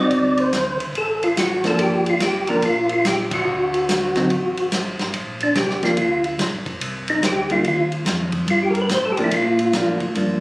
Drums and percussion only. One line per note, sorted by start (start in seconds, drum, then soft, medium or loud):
0.11 ride medium
0.37 ride soft
0.53 snare medium
0.53 hi-hat pedal soft
0.53 ride medium
0.80 ride soft
0.95 ride medium
1.23 ride soft
1.37 snare medium
1.37 hi-hat pedal medium
1.37 ride medium
1.64 snare soft
1.64 ride soft
1.79 ride medium
2.06 ride soft
2.20 snare medium
2.20 hi-hat pedal medium
2.20 ride medium
2.47 ride soft
2.62 ride medium
2.89 ride soft
3.05 snare medium
3.05 hi-hat pedal medium
3.05 ride medium
3.31 kick medium
3.31 ride medium
3.74 ride soft
3.89 snare medium
3.89 hi-hat pedal medium
3.89 ride medium
4.16 snare soft
4.16 ride soft
4.30 ride medium
4.57 ride soft
4.72 snare medium
4.72 hi-hat pedal medium
4.72 ride medium
4.99 snare soft
4.99 ride soft
5.14 ride medium
5.40 ride soft
5.55 snare medium
5.55 hi-hat pedal soft
5.55 ride medium
5.70 snare soft
5.83 snare soft
5.83 ride soft
5.97 ride medium
6.24 ride soft
6.39 snare medium
6.39 hi-hat pedal medium
6.39 ride medium
6.66 kick medium
6.66 ride soft
6.81 ride medium
7.08 ride soft
7.23 snare medium
7.23 hi-hat pedal soft
7.23 ride medium
7.50 ride soft
7.64 ride soft
7.92 ride soft
8.06 snare medium
8.06 hi-hat pedal medium
8.06 ride medium
8.32 kick medium
8.32 ride soft
8.48 ride medium
8.75 ride soft
8.89 snare medium
8.89 hi-hat pedal medium
8.89 ride medium
9.17 ride soft
9.31 ride medium
9.59 ride soft
9.73 snare medium
9.73 hi-hat pedal medium
9.73 ride medium
10.00 kick soft
10.00 ride soft
10.15 ride medium